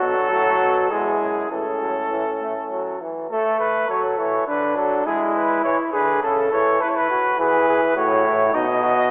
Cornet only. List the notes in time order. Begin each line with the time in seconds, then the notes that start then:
Already playing: A4
0.91 G#4
1.52 A4
3.31 A4
3.60 B4
3.90 C#5
4.20 C#5
4.48 B4
4.77 A4
5.07 G#4
5.36 B4
5.64 C#5
5.93 B4
6.22 A4
6.53 C#5
6.81 B4
6.89 C#5
6.96 B4
7.40 B4
7.98 C#5
8.54 D#5